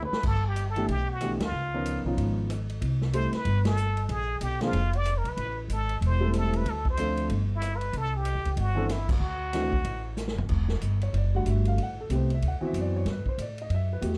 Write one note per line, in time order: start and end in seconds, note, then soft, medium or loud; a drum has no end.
0.02 0.24 B4 medium
0.02 mid tom soft
0.11 muted upright bass stroke soft
0.11 snare medium
0.23 0.85 G1 medium
0.23 0.49 A4 medium
0.23 kick medium
0.23 crash medium
0.48 0.68 G4 medium
0.56 hi-hat pedal medium
0.56 ride medium
0.70 0.91 A4 medium
0.76 0.87 E3 medium
0.76 0.87 A3 medium
0.76 0.88 B3 medium
0.76 0.88 D4 medium
0.76 0.88 G4 medium
0.76 ride soft
0.88 1.37 B1 medium
0.88 1.14 G4 medium
0.88 kick soft
0.88 ride medium
1.13 1.33 F#4 medium
1.21 1.39 E3 medium
1.21 1.39 A3 medium
1.21 1.39 B3 medium
1.21 1.40 D4 medium
1.21 1.39 G4 medium
1.21 cross-stick medium
1.21 hi-hat pedal medium
1.21 ride medium
1.39 1.51 D2 medium
1.39 snare medium
1.39 ride medium
1.45 2.03 F4 medium
1.52 2.00 C#2 medium
1.74 2.03 F3 medium
1.74 2.03 B3 medium
1.74 2.04 C#4 medium
1.74 2.04 D#4 medium
1.74 2.04 A#4 medium
1.86 hi-hat pedal medium
1.86 ride medium
2.04 2.16 B1 medium
2.04 2.47 F3 medium
2.04 2.47 B3 medium
2.04 2.47 C#4 medium
2.04 2.47 D#4 medium
2.04 2.48 F4 medium
2.17 2.78 G#1 medium
2.17 kick soft
2.17 ride medium
2.50 cross-stick medium
2.50 hi-hat pedal medium
2.50 ride medium
2.69 ride soft
2.81 3.29 C2 medium
2.81 kick soft
2.81 ride medium
3.01 snare soft
3.13 3.31 G3 medium
3.13 3.31 A3 medium
3.13 3.32 C4 medium
3.13 3.32 E4 medium
3.13 3.32 A4 medium
3.13 3.37 C5 medium
3.13 hi-hat pedal medium
3.13 ride medium
3.33 3.66 B4 loud
3.33 muted upright bass stroke soft
3.33 snare soft
3.33 ride soft
3.45 4.06 G1 medium
3.45 kick soft
3.45 ride medium
3.65 4.11 A4 loud
3.65 snare medium
3.65 ride medium
3.77 hi-hat pedal medium
3.97 ride soft
4.09 4.39 A#1 medium
4.09 4.44 G#4 loud
4.09 kick soft
4.09 ride medium
4.41 4.71 B1 medium
4.41 4.65 G4 medium
4.41 hi-hat pedal soft
4.41 ride medium
4.61 4.72 F3 medium
4.61 4.72 A#3 medium
4.61 4.73 C4 medium
4.61 4.72 D4 medium
4.61 4.98 F4 medium
4.61 4.73 G#4 medium
4.61 snare soft
4.61 ride soft
4.73 5.21 F1 medium
4.73 kick soft
4.73 ride medium
4.93 5.19 D5 loud
4.93 ride soft
5.05 cross-stick medium
5.05 hi-hat pedal medium
5.05 ride medium
5.18 5.30 A#4 medium
5.24 5.36 A#1 medium
5.24 ride soft
5.29 5.59 B4 medium
5.37 5.67 A1 medium
5.37 kick soft
5.37 ride medium
5.68 5.99 G#1 medium
5.68 hi-hat pedal medium
5.68 ride medium
5.73 6.01 A4 medium
5.89 ride soft
6.01 6.62 E1 medium
6.01 kick soft
6.01 ride medium
6.07 6.34 C5 medium
6.21 6.63 G3 medium
6.21 6.63 A3 medium
6.21 6.63 C4 medium
6.21 6.63 E4 medium
6.21 6.63 A4 medium
6.33 cross-stick medium
6.33 hi-hat pedal medium
6.33 ride medium
6.38 6.59 A4 medium
6.53 6.71 B4 medium
6.53 ride soft
6.65 7.26 D2 medium
6.65 kick soft
6.65 ride medium
6.70 6.87 A4 medium
6.85 kick medium
6.90 7.29 C5 loud
6.97 7.30 F3 medium
6.97 7.30 A3 medium
6.97 7.30 C4 medium
6.97 7.30 D4 medium
6.97 7.30 A4 medium
6.97 hi-hat pedal medium
6.97 ride medium
7.17 ride soft
7.29 7.90 G1 medium
7.29 kick soft
7.29 ride medium
7.55 7.78 E4 medium
7.62 cross-stick medium
7.62 hi-hat pedal medium
7.62 ride medium
7.77 7.96 B4 medium
7.81 ride soft
7.93 8.33 C2 medium
7.93 kick soft
7.93 ride medium
7.97 8.18 A4 loud
8.17 8.58 G4 medium
8.25 hi-hat pedal medium
8.25 ride medium
8.35 8.45 D2 medium
8.45 8.56 C#2 medium
8.45 ride soft
8.56 9.18 G1 medium
8.56 8.93 F#4 medium
8.56 kick soft
8.56 ride medium
8.75 8.87 E3 medium
8.75 8.88 B3 medium
8.75 8.88 C4 medium
8.75 8.88 D4 medium
8.75 8.88 A4 medium
8.89 9.10 E4 medium
8.89 cross-stick medium
8.89 snare soft
8.89 hi-hat pedal medium
8.89 ride medium
9.09 10.15 F#4 medium
9.09 kick medium
9.09 crash medium
9.20 9.82 D2 medium
9.53 9.71 E3 medium
9.53 9.71 A3 medium
9.53 9.71 C4 medium
9.53 9.71 D4 medium
9.53 9.71 F#4 medium
9.53 snare soft
9.53 hi-hat pedal soft
9.53 ride medium
9.73 kick medium
9.85 10.33 A1 medium
9.85 kick soft
9.85 ride medium
10.17 snare soft
10.17 hi-hat pedal medium
10.28 snare medium
10.36 10.48 F#1 medium
10.36 floor tom medium
10.49 10.80 E1 medium
10.49 kick medium
10.49 crash medium
10.68 snare soft
10.81 11.12 G1 medium
10.81 kick soft
10.81 hi-hat pedal medium
10.81 ride medium
11.01 11.14 C#5 medium
11.01 ride soft
11.13 11.45 F#1 medium
11.13 kick soft
11.13 ride medium
11.18 11.35 D5 medium
11.34 11.76 D3 medium
11.34 11.76 G3 medium
11.34 11.76 A3 medium
11.34 11.76 F#4 medium
11.34 11.47 F#5 medium
11.46 11.77 G1 medium
11.46 11.67 E5 medium
11.46 kick soft
11.46 hi-hat pedal medium
11.46 ride medium
11.65 11.79 F5 medium
11.65 ride soft
11.78 12.09 A1 medium
11.78 kick soft
11.78 ride medium
11.83 11.99 F#5 medium
12.01 12.11 A4 medium
12.09 12.41 C2 medium
12.09 12.28 C3 medium
12.09 12.28 A3 medium
12.09 12.28 B3 medium
12.09 12.29 G4 medium
12.09 kick soft
12.09 hi-hat pedal soft
12.09 ride medium
12.16 12.32 C5 medium
12.30 ride soft
12.34 12.44 E5 medium
12.42 12.60 D2 medium
12.42 kick soft
12.42 ride medium
12.48 12.64 F#5 medium
12.61 13.03 E3 medium
12.61 13.03 B3 medium
12.61 13.03 C4 medium
12.61 13.03 F#4 medium
12.61 muted upright bass stroke soft
12.66 12.76 E5 medium
12.73 13.05 F#2 medium
12.73 kick soft
12.73 hi-hat pedal soft
12.73 ride medium
12.81 12.96 D5 medium
12.96 13.07 C#5 medium
13.05 13.24 G2 medium
13.05 kick soft
13.05 snare soft
13.05 ride medium
13.10 13.27 B4 medium
13.25 13.39 C5 medium
13.25 muted upright bass stroke soft
13.25 kick soft
13.38 13.69 A2 medium
13.38 13.59 D5 medium
13.38 kick soft
13.38 hi-hat pedal medium
13.38 ride medium
13.58 13.72 D#5 medium
13.58 ride soft
13.70 14.01 F#2 medium
13.70 kick soft
13.70 ride medium
13.74 13.91 E5 medium
13.93 13.99 B4 medium
14.01 14.18 E2 medium
14.01 14.18 A3 medium
14.01 14.18 B3 medium
14.01 14.18 F#4 medium
14.01 14.18 G4 medium
14.01 kick soft
14.01 hi-hat pedal medium
14.01 ride medium
14.13 snare soft